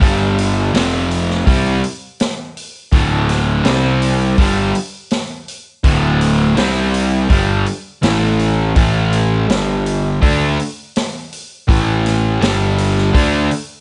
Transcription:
0.00 G1 G2 D3 G3, kick, open hi-hat
0.38 open hi-hat
0.74 F1 F2 C3 F3, snare, open hi-hat
1.11 open hi-hat
1.30 snare
1.46 C2 C3 G3 C4, kick, open hi-hat
1.84 open hi-hat
2.20 snare, open hi-hat
2.57 open hi-hat
2.92 D1 D2 A2 D3, kick, open hi-hat
3.29 snare, open hi-hat
3.65 C2 C3 G3 C4, snare, open hi-hat
4.02 open hi-hat
4.37 G1 G2 D3 G3, kick, open hi-hat
4.75 open hi-hat
5.11 snare, open hi-hat
5.48 open hi-hat
5.84 D1 D2 A2 D3, kick, open hi-hat
6.21 open hi-hat
6.56 C2 C3 G3 C4, snare, open hi-hat
6.94 open hi-hat
7.29 G1 G2 D3 G3, kick, open hi-hat
7.66 open hi-hat
8.02 A1 A2 E3 A3, snare, open hi-hat
8.39 open hi-hat
8.75 A1 A2 E3 A3, kick, open hi-hat
9.13 open hi-hat
9.48 G1 G2 D3 G3, snare, open hi-hat
9.86 open hi-hat
10.22 D2 D3 A3 D4, kick, open hi-hat
10.59 open hi-hat
10.96 snare, open hi-hat
11.33 open hi-hat
11.68 A1 A2 E3 A3, kick, open hi-hat
12.06 snare, open hi-hat
12.41 G1 G2 D3 G3, snare, open hi-hat
12.78 open hi-hat
12.98 snare
13.14 D2 D3 A3 D4, kick, open hi-hat
13.51 open hi-hat

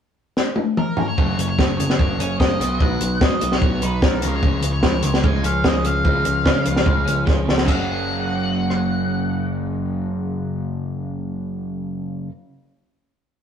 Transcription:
0.37 snare
0.56 high tom
0.77 A#4, mid tom
0.97 floor tom
1.08 C#5
1.18 F#1 F#2 C#3 F#3, kick
1.38 F#1 F#2 C#3, closed hi-hat
1.49 C#5
1.59 F#1 F#2 C#3 F#3, kick, snare
1.78 F#1 F#2 C#3 C#5, closed hi-hat
1.90 snare
1.99 F#1 F#2 C#3 F#3 A#3, kick
2.19 F#1 F#2 C#3 C#4, closed hi-hat
2.40 F#1 F#2 C#3 A#3 D#5, kick, snare
2.59 B1 B2 F#3 B3, closed hi-hat
2.79 B1 B2 F#3 B3 F#5, kick
3.00 B1 B2 F#3, closed hi-hat
3.21 B2 F#3 D#5, kick, snare
3.41 B1 B2 F#3, closed hi-hat
3.52 C#5, snare
3.62 B1 B2 F#3 B3, kick
3.82 B1 B2 F#3 D#4 B4, closed hi-hat
4.02 C2 B2 F#3 B3 A#4, kick, snare
4.22 C#2 C#3 F3 G#3, closed hi-hat
4.35 C#5
4.42 C#2 C#3 F3 G#3, kick
4.62 C#2 C#3 F3, closed hi-hat
4.72 C#5
4.83 C#2 C#3 F3, kick, snare
5.03 C#2 C#3 F3 C#5, closed hi-hat
5.14 snare
5.23 C#2 C#3 F3 G#3 G#5, kick
5.43 C#2 C#3 F3 C#4 F5, closed hi-hat
5.63 C#2 C#3 F3 G#3 D#5, kick, snare
5.84 C#3 F3 F5, closed hi-hat
6.04 C#2 C#3 F3 G#3, kick
6.25 C#2 C#3 F3, closed hi-hat
6.44 C#3 F3, kick, snare
6.64 C#2 C#3 F3, closed hi-hat
6.76 snare
6.83 C#2 C#3 F3 G#3, kick
7.05 C#2 C#3 F3 C#4, closed hi-hat
7.25 C#2 C#3 F3 G#3, kick, snare
7.46 C#2 C#3 F3, snare
7.58 snare
7.65 F#1 F#2 C#3 F#3 A#3 C#4 F#4 F#5, kick, crash
8.70 cross-stick

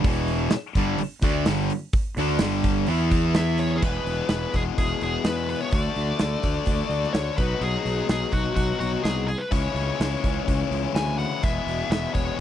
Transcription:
0.04 E1 E2 B2, kick, open hi-hat
0.08 E3
0.28 open hi-hat
0.50 muted fingered electric bass stroke, muted overdriven electric guitar stroke, muted distorted electric guitar stroke, snare, open hi-hat
0.75 G1 G2 D3 G3, kick, open hi-hat
0.98 muted fingered electric bass stroke, muted overdriven electric guitar stroke, muted distorted electric guitar stroke, open hi-hat
1.22 D2 D3 A3 D4, kick, open hi-hat
1.46 G1 G2 D3 G3, snare, open hi-hat
1.70 open hi-hat
1.93 kick, open hi-hat
2.17 D2 D3 A3 D4, open hi-hat
2.39 G1 G2, snare, open hi-hat
2.43 D3 G3
2.64 kick, open hi-hat
2.87 E2 E3 B3, open hi-hat
2.91 E4
3.11 kick, open hi-hat
3.34 E5, snare, open hi-hat
3.58 C#5, open hi-hat
3.76 G#4
3.82 E1 E2 B2 E3 G#3 B3 G#4 B4, kick, crash
4.05 E1, open hi-hat
4.29 E1 B4, snare, open hi-hat
4.53 E1 G#4, kick, open hi-hat
4.78 E1 G#4, kick, open hi-hat
5.01 E1 G#4, open hi-hat
5.24 E2 B4, snare, open hi-hat
5.49 B4, open hi-hat
5.61 C#5
5.71 D2 D3 A3 D4 D5, kick, open hi-hat
5.76 F#4
5.96 D2, open hi-hat
6.19 D2, snare, open hi-hat
6.43 D2, kick, open hi-hat
6.66 D2, kick, open hi-hat
6.90 D2, open hi-hat
7.04 snare
7.13 D2 C#5, snare, open hi-hat
7.38 B1 B2 F#3 B3 D#4 B4, kick, open hi-hat
7.42 F#4
7.61 B1 G#4, open hi-hat
7.85 B1, open hi-hat
8.09 B1 G#4, snare, open hi-hat
8.32 B1 F#4, kick, open hi-hat
8.56 B1 F#4, kick, open hi-hat
8.80 B1 F#4, open hi-hat
9.03 C2 G#4, snare, open hi-hat
9.28 G#4, open hi-hat
9.38 B4
9.51 C#2 C#3 E3 G#3 C#4 E4 C#5, kick, open hi-hat
9.75 C#2, open hi-hat
10.00 C#2, snare, open hi-hat
10.24 C#2, kick, open hi-hat
10.48 C#2, kick, open hi-hat
10.71 C#2, open hi-hat
10.94 D2 G#5, snare, open hi-hat
11.18 F#5, open hi-hat
11.42 E1 E2 B2 E3 G#3 B3 G#4 E5, kick, open hi-hat
11.67 E1, open hi-hat
11.90 E1 E5, snare, open hi-hat
12.14 E1 C#5, kick, open hi-hat

